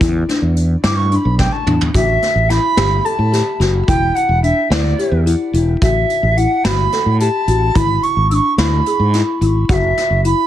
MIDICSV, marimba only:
0, 0, Header, 1, 2, 480
1, 0, Start_track
1, 0, Tempo, 552995
1, 9, Time_signature, 7, 3, 24, 8
1, 9087, End_track
2, 0, Start_track
2, 0, Title_t, "Marimba"
2, 0, Program_c, 0, 12
2, 7, Note_on_c, 0, 64, 89
2, 155, Note_off_c, 0, 64, 0
2, 251, Note_on_c, 0, 62, 84
2, 544, Note_off_c, 0, 62, 0
2, 731, Note_on_c, 0, 64, 71
2, 877, Note_off_c, 0, 64, 0
2, 973, Note_on_c, 0, 62, 83
2, 1266, Note_off_c, 0, 62, 0
2, 1451, Note_on_c, 0, 62, 83
2, 1597, Note_off_c, 0, 62, 0
2, 1690, Note_on_c, 0, 66, 84
2, 1983, Note_off_c, 0, 66, 0
2, 2166, Note_on_c, 0, 64, 65
2, 2313, Note_off_c, 0, 64, 0
2, 2402, Note_on_c, 0, 67, 76
2, 2551, Note_off_c, 0, 67, 0
2, 2645, Note_on_c, 0, 69, 72
2, 2793, Note_off_c, 0, 69, 0
2, 2885, Note_on_c, 0, 67, 74
2, 3033, Note_off_c, 0, 67, 0
2, 3126, Note_on_c, 0, 66, 75
2, 3274, Note_off_c, 0, 66, 0
2, 3367, Note_on_c, 0, 64, 82
2, 3662, Note_off_c, 0, 64, 0
2, 3847, Note_on_c, 0, 62, 69
2, 3994, Note_off_c, 0, 62, 0
2, 4092, Note_on_c, 0, 64, 76
2, 4238, Note_off_c, 0, 64, 0
2, 4329, Note_on_c, 0, 67, 77
2, 4476, Note_off_c, 0, 67, 0
2, 4568, Note_on_c, 0, 64, 75
2, 4715, Note_off_c, 0, 64, 0
2, 4810, Note_on_c, 0, 64, 75
2, 4957, Note_off_c, 0, 64, 0
2, 5055, Note_on_c, 0, 66, 87
2, 5348, Note_off_c, 0, 66, 0
2, 5532, Note_on_c, 0, 64, 73
2, 5678, Note_off_c, 0, 64, 0
2, 5770, Note_on_c, 0, 66, 73
2, 5917, Note_off_c, 0, 66, 0
2, 6016, Note_on_c, 0, 69, 66
2, 6161, Note_off_c, 0, 69, 0
2, 6256, Note_on_c, 0, 67, 80
2, 6401, Note_off_c, 0, 67, 0
2, 6496, Note_on_c, 0, 66, 71
2, 6641, Note_off_c, 0, 66, 0
2, 6734, Note_on_c, 0, 64, 88
2, 7027, Note_off_c, 0, 64, 0
2, 7216, Note_on_c, 0, 62, 69
2, 7362, Note_off_c, 0, 62, 0
2, 7457, Note_on_c, 0, 64, 78
2, 7602, Note_off_c, 0, 64, 0
2, 7698, Note_on_c, 0, 68, 71
2, 7843, Note_off_c, 0, 68, 0
2, 7939, Note_on_c, 0, 64, 75
2, 8084, Note_off_c, 0, 64, 0
2, 8176, Note_on_c, 0, 64, 74
2, 8322, Note_off_c, 0, 64, 0
2, 8420, Note_on_c, 0, 66, 92
2, 8712, Note_off_c, 0, 66, 0
2, 8895, Note_on_c, 0, 64, 75
2, 9042, Note_off_c, 0, 64, 0
2, 9087, End_track
0, 0, End_of_file